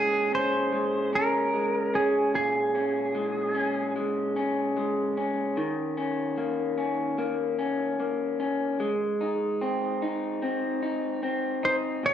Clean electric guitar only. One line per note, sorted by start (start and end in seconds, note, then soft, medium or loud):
0.00 2.33 A#2 medium
0.00 0.71 G#3 medium
0.00 0.32 C#4 medium
0.33 1.12 C#4 medium
0.72 1.52 G#3 medium
1.13 1.94 C#4 medium
1.53 3.13 G#3 medium
1.94 2.75 C#4 medium
2.34 5.57 A#2 medium
2.75 3.54 C#4 medium
3.15 3.95 G#3 medium
3.55 4.36 C#4 medium
3.96 4.76 G#3 medium
4.36 5.17 C#4 medium
4.77 5.66 G#3 medium
5.17 5.97 C#4 soft
5.57 9.07 D#3 medium
5.97 6.76 C#4 medium
6.38 7.17 A#3 medium
6.78 7.57 C#4 medium
7.18 7.98 A#3 medium
7.59 8.39 C#4 medium
8.00 8.79 A#3 medium
8.40 8.89 C#4 medium
8.80 12.06 G#3 medium
9.21 10.01 D#4 medium
9.62 10.41 C4 medium
10.02 10.81 D#4 medium
10.42 11.22 C4 medium
10.83 11.62 D#4 medium
11.23 12.13 C4 medium
11.63 12.12 D#4 medium
12.03 12.14 A#2 medium